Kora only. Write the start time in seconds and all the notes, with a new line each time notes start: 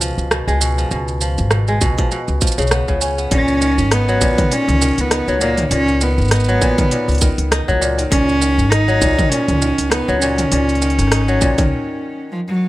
Already playing: B2 G#3
0.01 F3
0.31 B2
0.48 G#3
0.61 B2
0.78 F3
0.91 B2
1.21 F3
1.51 B2
1.68 G#3
1.81 B2
1.99 F3
2.12 B2
2.42 F3
2.58 C#3
2.71 B3
2.88 C#3
3.01 C#4
3.18 B3
3.31 A#2
3.61 D#3
3.91 D#4
4.09 F#3
4.21 A#2
4.38 D#3
4.51 A#2
4.82 D#3
5.11 D#4
5.28 F#3
5.41 A#2
5.58 D#3
5.71 A#2
6.01 D#3
6.32 D#4
6.48 F#3
6.61 A#2
6.78 D#3
6.92 A#2
7.22 D#3
7.51 D#4
7.68 F#3
7.81 A#2
7.98 D#3
8.11 A#2
8.41 D#3
8.71 D#4
8.88 F#3
9.02 A#2
9.19 D#3
9.32 A#2
9.62 D#3
9.91 D#4
10.08 F#3
10.22 A#2
10.39 D#3
10.52 A#2
10.82 D#3
11.11 D#4
11.28 F#3
11.41 A#2
11.58 D#3